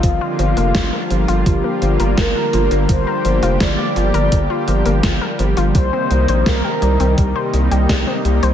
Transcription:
0.00 0.19 G1 loud
0.00 5.71 D3 medium
0.00 5.71 F3 medium
0.00 0.18 F3 medium
0.00 8.54 G3 medium
0.00 5.71 A#3 medium
0.00 2.86 F4 medium
0.00 1.42 F4 loud
0.00 kick loud
0.00 closed hi-hat medium
0.21 0.36 F4 loud
0.39 0.55 G1 medium
0.39 0.56 F3 loud
0.39 closed hi-hat medium
0.57 0.73 F1 medium
0.57 0.72 A#3 loud
0.57 closed hi-hat medium
0.75 0.90 G1 loud
0.75 0.89 F3 medium
0.75 kick loud
0.75 snare loud
0.75 closed hi-hat medium
0.93 1.01 A#4 loud
1.10 1.26 G1 medium
1.10 1.25 F3 medium
1.10 closed hi-hat medium
1.28 1.44 G1 medium
1.28 1.43 F4 loud
1.28 closed hi-hat medium
1.46 1.62 G1 loud
1.46 1.63 F3 loud
1.46 2.14 G4 medium
1.46 kick loud
1.46 closed hi-hat medium
1.64 1.79 A#3 medium
1.82 1.98 G1 medium
1.82 1.97 F3 medium
1.82 closed hi-hat medium
2.00 2.15 G1 medium
2.00 2.09 A#4 loud
2.00 closed hi-hat medium
2.18 2.33 G1 loud
2.18 2.32 F3 medium
2.18 2.85 A#4 loud
2.18 kick loud
2.18 snare loud
2.18 closed hi-hat medium
2.36 2.50 F4 loud
2.53 2.69 G1 medium
2.53 2.71 F3 loud
2.53 closed hi-hat medium
2.71 2.87 G1 medium
2.71 2.86 A#3 loud
2.71 closed hi-hat medium
2.89 3.05 G1 loud
2.89 3.04 F3 medium
2.89 5.72 G4 medium
2.89 3.57 C5 loud
2.89 kick loud
2.89 closed hi-hat medium
3.07 3.16 A#4 loud
3.25 3.41 G1 medium
3.25 3.39 F3 medium
3.25 closed hi-hat medium
3.43 3.58 F1 medium
3.43 3.57 F4 loud
3.43 closed hi-hat medium
3.60 3.76 G1 loud
3.60 3.77 F3 loud
3.60 5.35 D5 loud
3.60 kick loud
3.60 snare loud
3.60 closed hi-hat medium
3.78 3.93 A#3 loud
3.96 4.12 G1 medium
3.96 4.11 F3 medium
3.96 closed hi-hat medium
4.14 4.30 G1 medium
4.14 4.23 A#4 loud
4.14 closed hi-hat medium
4.32 4.48 G1 loud
4.32 4.47 F3 medium
4.32 kick loud
4.32 closed hi-hat medium
4.50 4.64 F4 loud
4.68 4.83 G1 medium
4.68 4.85 F3 loud
4.68 closed hi-hat medium
4.86 5.01 G1 medium
4.86 5.00 A#3 loud
4.86 closed hi-hat medium
5.03 5.19 G1 loud
5.03 5.18 F3 medium
5.03 kick loud
5.03 snare loud
5.03 closed hi-hat medium
5.21 5.30 A#4 loud
5.39 5.55 G1 medium
5.39 5.54 F3 medium
5.39 closed hi-hat medium
5.57 5.73 G1 medium
5.57 5.72 F4 loud
5.57 closed hi-hat medium
5.75 5.90 C2 loud
5.75 8.54 C3 medium
5.75 8.54 D#3 medium
5.75 5.92 G3 loud
5.75 8.54 A#3 medium
5.75 8.54 D#4 medium
5.75 6.48 C5 loud
5.75 kick loud
5.75 closed hi-hat medium
5.93 6.07 C4 loud
6.11 6.26 C2 medium
6.11 6.25 G3 medium
6.11 closed hi-hat medium
6.28 6.44 A#1 medium
6.28 6.37 C5 loud
6.28 closed hi-hat medium
6.46 6.62 C2 loud
6.46 6.61 G3 medium
6.46 7.14 A#4 loud
6.46 kick loud
6.46 snare loud
6.46 closed hi-hat medium
6.64 6.79 G4 loud
6.82 6.98 C2 medium
6.82 6.99 G3 loud
6.82 closed hi-hat medium
7.00 7.15 C2 medium
7.00 7.15 C4 loud
7.00 closed hi-hat medium
7.18 7.33 C2 loud
7.18 7.32 G3 medium
7.18 8.54 G4 medium
7.18 kick loud
7.18 closed hi-hat medium
7.36 7.44 C5 loud
7.54 7.69 C2 medium
7.54 7.68 G3 medium
7.54 closed hi-hat medium
7.71 7.87 C2 medium
7.71 7.86 G4 loud
7.71 closed hi-hat medium
7.89 8.05 C2 loud
7.89 8.06 G3 loud
7.89 kick loud
7.89 snare loud
7.89 closed hi-hat medium
8.07 8.22 C4 loud
8.25 8.40 C2 medium
8.25 8.40 G3 medium
8.25 closed hi-hat medium
8.43 8.54 C2 medium
8.43 8.52 C5 loud
8.43 closed hi-hat medium

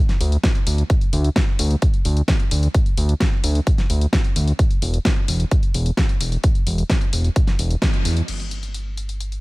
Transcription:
0.09 snare soft
0.09 closed hi-hat soft
0.21 0.37 D2 medium
0.21 open hi-hat loud
0.32 closed hi-hat medium
0.43 kick loud
0.43 snare loud
0.43 closed hi-hat medium
0.55 closed hi-hat soft
0.67 0.83 D2 medium
0.67 open hi-hat loud
0.78 closed hi-hat soft
0.90 kick loud
0.90 closed hi-hat medium
1.01 closed hi-hat soft
1.13 1.29 D2 loud
1.13 open hi-hat loud
1.24 closed hi-hat soft
1.36 kick loud
1.36 snare loud
1.36 closed hi-hat medium
1.59 1.76 D2 medium
1.59 open hi-hat loud
1.71 closed hi-hat soft
1.82 kick loud
1.82 closed hi-hat medium
1.94 closed hi-hat soft
2.05 2.22 D2 medium
2.05 open hi-hat loud
2.17 closed hi-hat medium
2.28 kick loud
2.28 snare loud
2.28 closed hi-hat medium
2.40 closed hi-hat soft
2.51 2.68 D2 medium
2.51 open hi-hat loud
2.63 closed hi-hat medium
2.74 kick loud
2.74 closed hi-hat medium
2.86 closed hi-hat soft
2.97 3.14 D2 loud
2.97 open hi-hat loud
3.09 closed hi-hat medium
3.20 kick loud
3.20 snare loud
3.20 closed hi-hat medium
3.44 3.60 D2 medium
3.44 open hi-hat loud
3.55 closed hi-hat medium
3.67 kick loud
3.67 closed hi-hat medium
3.78 snare soft
3.78 closed hi-hat soft
3.90 4.06 D2 medium
3.90 open hi-hat loud
4.01 closed hi-hat medium
4.13 kick loud
4.13 snare loud
4.13 closed hi-hat medium
4.24 closed hi-hat soft
4.36 4.52 D2 medium
4.36 open hi-hat loud
4.48 closed hi-hat medium
4.59 kick loud
4.59 closed hi-hat medium
4.71 closed hi-hat soft
4.82 4.99 E1 loud
4.82 open hi-hat loud
4.94 closed hi-hat medium
5.05 kick loud
5.05 snare loud
5.05 closed hi-hat medium
5.28 5.45 E1 medium
5.28 open hi-hat loud
5.40 closed hi-hat medium
5.51 kick loud
5.51 closed hi-hat medium
5.63 closed hi-hat soft
5.74 5.91 E1 medium
5.74 open hi-hat loud
5.86 closed hi-hat medium
5.97 kick loud
5.97 snare loud
5.97 closed hi-hat medium
6.09 closed hi-hat soft
6.21 6.37 E1 medium
6.21 open hi-hat loud
6.32 closed hi-hat medium
6.44 kick loud
6.44 closed hi-hat medium
6.55 closed hi-hat soft
6.67 6.83 E1 loud
6.67 open hi-hat loud
6.78 closed hi-hat medium
6.90 kick loud
6.90 snare loud
6.90 closed hi-hat medium
7.01 closed hi-hat soft
7.13 7.29 E1 medium
7.13 open hi-hat loud
7.24 closed hi-hat medium
7.36 kick loud
7.36 closed hi-hat medium
7.47 snare soft
7.47 closed hi-hat soft
7.59 7.76 E1 loud
7.59 open hi-hat loud
7.71 closed hi-hat medium
7.82 kick loud
7.82 snare loud
7.82 closed hi-hat medium
7.94 closed hi-hat soft
8.05 8.22 E2 medium
8.05 open hi-hat loud
8.17 closed hi-hat medium
8.28 9.40 G1 medium
8.28 closed hi-hat medium
8.28 crash medium
8.40 closed hi-hat soft
8.51 closed hi-hat medium
8.63 closed hi-hat soft
8.74 closed hi-hat medium
8.97 closed hi-hat medium
9.09 closed hi-hat soft
9.20 closed hi-hat medium
9.32 closed hi-hat soft

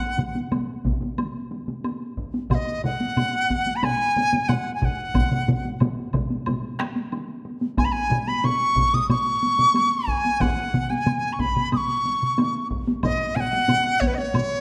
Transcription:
0.00 0.48 F#5 medium
0.18 taiko mid loud
0.18 taiko high soft
0.35 taiko high soft
0.52 taiko mid medium
0.52 taiko high medium
0.52 high woodblock soft
0.85 taiko medium
0.85 taiko mid medium
0.85 taiko high soft
1.02 taiko mid medium
1.02 taiko high soft
1.18 taiko mid medium
1.18 taiko high medium
1.18 high woodblock soft
1.51 taiko high soft
1.68 taiko mid medium
1.68 taiko high soft
1.84 taiko high medium
1.84 high woodblock soft
2.17 taiko medium
2.34 taiko high soft
2.50 2.55 F#5 medium
2.50 taiko medium
2.50 taiko low-mid loud
2.50 taiko high medium
2.50 high woodblock soft
2.54 2.81 D#5 medium
2.84 3.77 F#5 medium
2.84 taiko low-mid medium
3.00 taiko high soft
3.17 taiko low-mid medium
3.17 taiko high medium
3.17 high woodblock soft
3.50 taiko medium
3.50 taiko high soft
3.67 taiko high soft
3.76 3.85 B5 medium
3.83 4.50 G#5 medium
3.83 taiko low-mid medium
3.83 taiko high medium
3.83 high woodblock medium
4.16 taiko low-mid medium
4.16 taiko high soft
4.33 taiko low-mid medium
4.33 taiko high soft
4.48 4.74 F#5 medium
4.48 taiko low-mid medium
4.48 taiko high medium
4.48 high woodblock soft
4.74 4.81 G#5 medium
4.81 5.80 F#5 medium
4.81 4.86 G#5 medium
4.81 taiko medium
4.81 taiko low-mid medium
5.15 taiko medium
5.15 taiko low-mid medium
5.15 taiko mid medium
5.15 taiko high medium
5.15 high woodblock soft
5.31 taiko low-mid medium
5.31 taiko mid medium
5.48 taiko low-mid medium
5.48 taiko mid medium
5.48 taiko high soft
5.65 taiko high soft
5.80 taiko low-mid medium
5.80 taiko mid medium
5.80 taiko high medium
5.80 high woodblock soft
6.13 taiko medium
6.13 taiko low-mid medium
6.13 taiko mid medium
6.13 taiko high soft
6.13 high woodblock soft
6.30 taiko high soft
6.46 taiko low-mid medium
6.46 taiko mid medium
6.46 taiko high medium
6.46 high woodblock soft
6.79 taiko rim medium
6.79 taiko high soft
6.96 taiko high soft
7.12 taiko high medium
7.12 high woodblock soft
7.45 taiko high soft
7.61 taiko high medium
7.78 7.86 G#5 medium
7.78 taiko medium
7.78 taiko high medium
7.78 high woodblock soft
7.85 7.94 B5 medium
7.92 8.29 G#5 medium
8.11 taiko low-mid medium
8.11 taiko high soft
8.27 8.46 B5 medium
8.27 taiko high soft
8.44 8.96 C#6 medium
8.44 taiko low-mid medium
8.44 taiko high medium
8.44 high woodblock soft
8.76 taiko medium
8.76 taiko low-mid medium
8.76 taiko high soft
8.93 9.09 D#6 medium
8.93 taiko low-mid medium
8.93 taiko high soft
9.10 10.10 C#6 medium
9.10 taiko low-mid medium
9.10 taiko high medium
9.10 high woodblock soft
9.43 taiko high soft
9.59 taiko low-mid medium
9.59 taiko high soft
9.75 taiko high medium
9.75 high woodblock soft
10.08 10.42 G#5 medium
10.08 taiko medium
10.25 taiko high soft
10.40 10.91 F#5 medium
10.40 taiko loud
10.40 taiko high soft
10.40 high woodblock soft
10.74 taiko mid loud
10.74 taiko high soft
10.90 11.34 G#5 medium
10.90 taiko high soft
11.06 taiko mid medium
11.06 taiko high medium
11.06 high woodblock soft
11.32 11.41 C#6 medium
11.39 11.72 B5 medium
11.39 taiko medium
11.39 taiko mid medium
11.39 taiko high soft
11.56 taiko mid medium
11.56 taiko high soft
11.72 11.78 D#6 medium
11.72 taiko mid medium
11.72 taiko high medium
11.72 high woodblock soft
11.77 12.67 C#6 medium
12.05 taiko high soft
12.22 taiko mid medium
12.38 taiko high medium
12.38 high woodblock soft
12.71 taiko medium
12.87 taiko high medium
13.03 13.37 D#5 medium
13.03 taiko loud
13.03 taiko low-mid medium
13.03 taiko high medium
13.03 high woodblock soft
13.35 13.41 G#5 medium
13.35 taiko low-mid medium
13.35 taiko high medium
13.40 14.01 F#5 medium
13.53 taiko high medium
13.69 taiko low-mid medium
13.69 taiko high medium
13.69 high woodblock soft
14.00 14.08 C#5 medium
14.00 taiko medium
14.00 taiko high medium
14.07 14.16 B4 medium
14.14 14.61 C#5 medium
14.14 14.18 D#5 medium
14.14 taiko high medium
14.34 taiko low-mid medium
14.34 taiko high medium
14.34 high woodblock medium

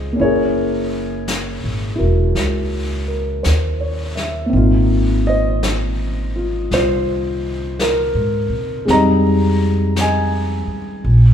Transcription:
0.00 0.14 C#2 medium
0.00 0.17 G#3 soft
0.00 0.18 C4 soft
0.00 0.18 D#4 soft
0.00 0.18 F4 soft
0.00 0.20 G#4 medium
0.00 0.22 C5 medium
0.00 0.20 D#5 medium
0.00 0.18 G5 medium
0.13 4.44 A#3 soft
0.13 4.52 C#4 soft
0.19 1.60 F#1 medium
0.19 1.94 E4 soft
0.19 1.97 A#4 medium
0.19 3.42 C#5 medium
0.19 brush sweep soft
0.24 4.56 G#4 medium
1.28 brush sweep soft
1.28 snare soft
1.28 hi-hat pedal medium
1.64 1.97 G#1 soft
1.96 4.52 E4 soft
1.96 4.52 F#4 soft
1.96 3.06 A#4 soft
2.01 2.34 E1 medium
2.35 3.40 C#2 medium
2.35 brush sweep soft
2.35 snare soft
3.08 3.64 A#4 soft
3.43 4.50 D#2 medium
3.43 4.12 C5 soft
3.43 brush sweep soft
3.43 snare soft
3.43 hi-hat pedal soft
3.81 4.37 C#5 soft
4.15 4.72 E5 soft
4.15 snare soft
4.46 8.84 A#3 soft
4.46 8.86 C4 soft
4.53 6.67 G#1 medium
4.53 8.87 D#4 soft
4.53 6.34 F4 medium
4.53 brush sweep soft
5.27 6.72 C5 soft
5.27 6.68 D#5 medium
5.63 brush sweep soft
5.63 snare soft
5.63 hi-hat pedal medium
6.36 6.73 F4 soft
6.71 8.12 C2 medium
6.71 8.86 F4 medium
6.71 7.84 C5 medium
6.71 brush sweep soft
6.71 snare soft
7.79 8.92 A#4 medium
7.79 brush sweep soft
7.79 snare soft
7.79 hi-hat pedal soft
8.14 8.49 G#2 medium
8.50 8.84 C3 medium
8.86 10.64 F2 medium
8.86 11.04 G#3 medium
8.86 11.05 C4 soft
8.86 11.06 D#4 soft
8.86 brush sweep soft
8.86 snare soft
8.90 11.06 G3 medium
8.90 10.00 D#5 medium
8.90 10.01 A#5 medium
9.96 brush sweep soft
9.96 snare soft
9.96 hi-hat pedal soft
10.01 11.03 D#5 medium
10.01 11.34 G#5 medium
10.67 muted upright bass stroke soft
11.04 11.34 A#1 medium
11.04 brush sweep soft

